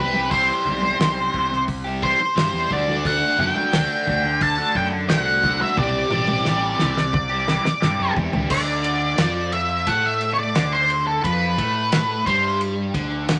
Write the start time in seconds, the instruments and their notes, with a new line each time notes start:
Already playing: fingered electric bass C2, overdriven electric guitar C3 E3
0.00 overdriven electric guitar G3 C4 G4, lead electric guitar B4
0.13 overdriven electric guitar G3 C4 G4, high conga
0.30 overdriven electric guitar C3 E3 G3 C4 G4, lead electric guitar C5, kick, open hi-hat
0.65 fingered electric bass B1, overdriven electric guitar E3 G3 C4 G4, low conga
0.82 high conga
0.99 fingered electric bass B1, overdriven electric guitar C3 E3 G3 C4 G4, snare, open hi-hat
1.33 fingered electric bass C2, overdriven electric guitar E3 G3 C4 G4, kick, low conga
1.52 muted overdriven electric guitar stroke, snare
1.68 kick, open hi-hat
1.84 overdriven electric guitar G3 C4 G4
2.02 overdriven electric guitar E3 G3 C4 G4, lead electric guitar C5, kick
2.20 muted overdriven electric guitar stroke
2.35 fingered electric bass G2, overdriven electric guitar C3 E3 G3 C4 G4, snare, open hi-hat
2.53 fingered electric bass E2
2.70 fingered electric bass D2, overdriven electric guitar D3 A3 D4 F#4, lead electric guitar D5, kick, high conga
2.87 overdriven electric guitar A3 D4 F#4, high conga
3.03 overdriven electric guitar D3 A3 D4 F#4, lead electric guitar F#5, kick, open hi-hat
3.37 fingered electric bass F#2, overdriven electric guitar D3 A3 D4 F#4, lead electric guitar F#5, low conga
3.51 lead electric guitar G5
3.56 high conga
3.71 fingered electric bass D2, overdriven electric guitar D3 A3 D4 F#4, snare, open hi-hat
4.06 fingered electric bass D2, overdriven electric guitar D3 A3 D4 F#4, kick, low conga
4.24 muted overdriven electric guitar stroke
4.41 lead electric guitar A5, kick, open hi-hat
4.58 overdriven electric guitar A3 D4 F#4
4.74 fingered electric bass F#2, overdriven electric guitar D3 A3 D4 F#4, lead electric guitar G5, kick
4.93 muted overdriven electric guitar stroke
5.08 fingered electric bass C2, overdriven electric guitar D3 A3 D4 F#4, lead electric guitar F#5, snare, open hi-hat
5.43 overdriven electric guitar D3 A3 D4 F#4, kick, high conga, low conga
5.60 overdriven electric guitar A3 D4 F#4, lead electric guitar E5, high conga
5.77 fingered electric bass C2, overdriven electric guitar C3 E3 G3 C4 G4, lead electric guitar D5, kick, high tom, low conga
6.11 fingered electric bass A1, overdriven electric guitar E3 G3 C4 G4, high tom
6.28 high tom, high conga
6.45 fingered electric bass A1, overdriven electric guitar C3 E3 G3 C4 G4, snare
6.78 fingered electric bass C2, overdriven electric guitar E3 G3 C4 G4, snare, low conga
6.97 muted overdriven electric guitar stroke, snare
7.13 kick, mid tom
7.30 overdriven electric guitar G3 C4 G4
7.47 overdriven electric guitar E3 G3 C4 G4, snare
7.65 muted overdriven electric guitar stroke, snare, high conga
7.81 fingered electric bass G2, overdriven electric guitar C3 E3 G3 C4 G4, snare
8.00 fingered electric bass F#2
8.16 fingered electric bass E2, overdriven electric guitar E3 G3 C4 G4, kick, high conga, low conga
8.32 fingered electric bass D2, overdriven electric guitar G3 C4 G4, floor tom, high conga
8.50 fingered electric bass D2, overdriven electric guitar D3, lead electric guitar D5, kick, crash
8.84 ride
9.18 fingered electric bass F2, overdriven electric guitar F3, snare, ride
9.52 lead electric guitar E5, ride
9.87 fingered electric bass A2, overdriven electric guitar A3, lead electric guitar F#5, kick, ride
10.06 lead electric guitar E5
10.21 ride
10.34 lead electric guitar C#5
10.39 lead electric guitar D5
10.55 fingered electric bass D2, overdriven electric guitar D3, snare, ride
10.72 lead electric guitar C5
10.90 ride
11.07 lead electric guitar A4
11.24 fingered electric bass F2, overdriven electric guitar F3, lead electric guitar B4, kick, ride
11.58 fingered electric bass A2, overdriven electric guitar A3, kick, ride
11.92 snare, ride
12.26 fingered electric bass G2, overdriven electric guitar G3, lead electric guitar C5, kick, ride
12.61 ride
12.94 fingered electric bass D2, overdriven electric guitar D3, kick, ride
13.29 snare, ride